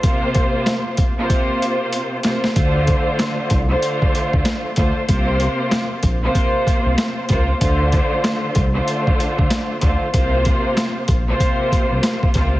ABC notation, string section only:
X:1
M:4/4
L:1/16
Q:"Swing 16ths" 1/4=95
K:Cmix
V:1 name="String section"
[C,B,Fc]6 z [C,B,Fc]6 z [C,B,Fc]2 | [D,A,Fc]6 z [D,A,Fc]6 z [D,A,Fc]2 | [C,B,Fc]6 z [C,B,Fc]6 z [C,B,Fc]2 | [D,A,Fc]6 z [D,A,Fc]6 z [D,A,Fc]2 |
[C,B,Fc]6 z [C,B,Fc]6 z [C,B,Fc]2 |]